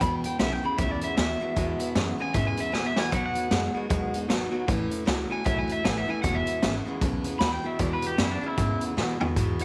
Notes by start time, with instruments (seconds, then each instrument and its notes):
0.00 steel-string acoustic guitar E2 B2 E3 G#3 B3 E4, upright bass E2, clean electric guitar E2 B2 B5, kick, closed hi-hat
0.23 steel-string acoustic guitar E3 G#3 B3 E4, clean electric guitar G5, muted upright bass stroke, closed hi-hat
0.39 upright bass B1, clean electric guitar E2 C#3 E5, steel-string acoustic guitar E3 G#3 B3 E4, snare, closed hi-hat
0.53 clean electric guitar G5
0.63 clean electric guitar E2 C#3 B5, steel-string acoustic guitar E3 G#3 B3 E4
0.78 upright bass C#2, clean electric guitar E2 C#3 E5, steel-string acoustic guitar E2 B2 E3 G#3 B3 E4, kick, closed hi-hat
0.91 clean electric guitar D5
1.01 steel-string acoustic guitar E3 G#3 B3 E4, clean electric guitar E5, closed hi-hat
1.17 upright bass D#2, clean electric guitar E2 B2 E5, steel-string acoustic guitar E3 G#3 B3 E4, snare, closed hi-hat
1.40 clean electric guitar E2 B2, steel-string acoustic guitar E3 G#3 B3 E4
1.56 steel-string acoustic guitar E2 B2 E3 G#3 B3 E4, upright bass E2, clean electric guitar E2 B2, kick, closed hi-hat
1.79 steel-string acoustic guitar E3 G#3 B3 E4, muted upright bass stroke, closed hi-hat
1.95 clean electric guitar E2 C#3, upright bass F#2, steel-string acoustic guitar E3 G#3 B3 E4, snare, closed hi-hat
2.18 clean electric guitar E2 C#3 G#5, steel-string acoustic guitar E3 G#3 B3 E4
2.34 steel-string acoustic guitar E2 B2 E3 G#3 B3 E4, clean electric guitar E2 C#3 E5, upright bass G#2, kick, closed hi-hat
2.47 clean electric guitar G#5
2.57 steel-string acoustic guitar E3 G#3 B3 E4, clean electric guitar E5, muted upright bass stroke, closed hi-hat
2.72 clean electric guitar E2 B2 G#5, upright bass A#2, steel-string acoustic guitar E3 G#3 B3 E4, snare
2.86 clean electric guitar E5
2.96 clean electric guitar E2 B2 G#5, steel-string acoustic guitar E3 G#3 B3 E4, muted upright bass stroke, snare
3.12 steel-string acoustic guitar B2 F#3 B3 D#4 F#4, upright bass B2, clean electric guitar B2 F#3 F#5, kick, closed hi-hat
3.26 clean electric guitar F#5
3.34 steel-string acoustic guitar B3 D#4 F#4, muted upright bass stroke, closed hi-hat
3.51 upright bass F#2, clean electric guitar B2 G#3, steel-string acoustic guitar F#3 B3 D#4 F#4, snare, closed hi-hat
3.74 clean electric guitar B2 G#3, steel-string acoustic guitar B3 D#4 F#4, muted upright bass stroke
3.89 upright bass D#2, clean electric guitar B2 G#3, steel-string acoustic guitar B2 F#3 B3 D#4 F#4, kick, closed hi-hat
4.13 steel-string acoustic guitar B3 D#4 F#4, muted upright bass stroke, closed hi-hat
4.29 upright bass G#1, clean electric guitar B2 F#3, steel-string acoustic guitar F#3 B3 D#4 F#4, snare, closed hi-hat
4.51 clean electric guitar B2 F#3, steel-string acoustic guitar B3 D#4 F#4
4.67 upright bass A1, clean electric guitar A2 E3, steel-string acoustic guitar A2 E3 A3 C#4 E4, kick, closed hi-hat
4.90 steel-string acoustic guitar A3 C#4 E4, muted upright bass stroke, closed hi-hat
5.05 upright bass C#2, clean electric guitar A2 F#3, steel-string acoustic guitar E3 A3 C#4 E4, snare, closed hi-hat
5.29 clean electric guitar A2 F#3 G#5, steel-string acoustic guitar A3 C#4 E4, muted upright bass stroke
5.44 upright bass B1, steel-string acoustic guitar A2 E3 A3 C#4 E4, clean electric guitar A2 F#3 E5, kick, closed hi-hat
5.59 clean electric guitar G#5
5.67 steel-string acoustic guitar A3 C#4 E4, muted upright bass stroke, closed hi-hat
5.72 clean electric guitar E5
5.84 upright bass A1, clean electric guitar A2 E3 G#5, steel-string acoustic guitar E3 A3 C#4 E4, snare, closed hi-hat
5.98 clean electric guitar E5
6.07 clean electric guitar A2 E3 G#5, steel-string acoustic guitar A3 C#4 E4
6.22 upright bass E1, steel-string acoustic guitar E2 B2 E3 G#3 B3 E4, clean electric guitar E2 B2 F#5, kick, closed hi-hat
6.35 clean electric guitar E5
6.46 steel-string acoustic guitar E3 G#3 B3 E4, closed hi-hat
6.62 upright bass G#1, clean electric guitar E2 C#3, steel-string acoustic guitar E3 G#3 B3 E4, snare, closed hi-hat
6.85 clean electric guitar E2 C#3, steel-string acoustic guitar E3 G#3 B3 E4, muted upright bass stroke
7.01 upright bass B1, steel-string acoustic guitar E2 B2 E3 G#3 B3 E4, clean electric guitar E2 C#3, kick, closed hi-hat
7.24 steel-string acoustic guitar E3 G#3 B3 E4, muted upright bass stroke, closed hi-hat
7.39 upright bass D#2, clean electric guitar E2 B2 B5, steel-string acoustic guitar E3 G#3 B3, snare, closed hi-hat
7.43 steel-string acoustic guitar E4
7.53 clean electric guitar G5
7.63 clean electric guitar E2 B2 E5, steel-string acoustic guitar E3 G#3 B3 E4
7.79 steel-string acoustic guitar E2 B2 E3 G#3 B3 E4, clean electric guitar E2 B2 D5, upright bass E2, kick, closed hi-hat
7.93 clean electric guitar B4
8.01 steel-string acoustic guitar E3 G#3 B3 E4, closed hi-hat
8.07 clean electric guitar G4
8.18 clean electric guitar E2 C#3 E4, upright bass F#2, steel-string acoustic guitar E3 G#3 B3 E4, snare, closed hi-hat
8.32 clean electric guitar D4
8.41 clean electric guitar E2 C#3, steel-string acoustic guitar E3 G#3 B3 E4, muted upright bass stroke
8.46 clean electric guitar E4
8.57 clean electric guitar E2 C#3, steel-string acoustic guitar E2 B2 E3 G#3 B3 E4, upright bass G#2, kick, closed hi-hat
8.81 steel-string acoustic guitar E3 G#3 B3 E4, muted upright bass stroke, closed hi-hat
8.97 clean electric guitar E2 B2, upright bass B2, steel-string acoustic guitar E3 G#3 B3 E4, snare
9.20 clean electric guitar E2 B2, steel-string acoustic guitar E3 G#3 B3 E4, muted upright bass stroke, floor tom
9.36 clean electric guitar E2 B2, steel-string acoustic guitar E2 B2 E3 G#3 B3 E4, upright bass G#2, kick, closed hi-hat
9.59 steel-string acoustic guitar B3 E4, muted upright bass stroke, closed hi-hat